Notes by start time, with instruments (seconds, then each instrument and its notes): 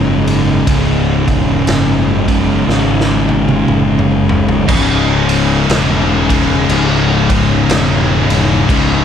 Already playing: fingered electric bass F#1, distorted electric guitar C#2 G#2 C#3, string machine C#3 G#3 D#4
0.27 ride
0.67 fingered electric bass C#1, distorted electric guitar C#2 G#2 C#3, kick, ride
1.27 fingered electric bass E1, kick, ride
1.67 fingered electric bass F#1, snare, ride
2.28 distorted electric guitar C#2 G#2 C#3, kick, ride
2.67 fingered electric bass G#1, distorted electric guitar C#2 G#2 C#3, snare
3.00 snare
3.29 high tom
3.49 high tom
3.68 fingered electric bass F#1, mid tom
3.99 mid tom
4.29 floor tom
4.49 floor tom
4.68 fingered electric bass C#1, distorted electric guitar C#2 G#2 C#3, string machine C#3 G#3 D#4, kick, crash
5.29 ride
5.69 fingered electric bass E1, snare, ride
6.28 distorted electric guitar C#2 G#2 C#3, kick, ride
6.69 fingered electric bass C#1, ride
7.29 kick, ride
7.68 fingered electric bass E1, snare, ride
8.29 fingered electric bass E1, ride
8.69 fingered electric bass C#1, distorted electric guitar C#2 G#2 C#3, kick, ride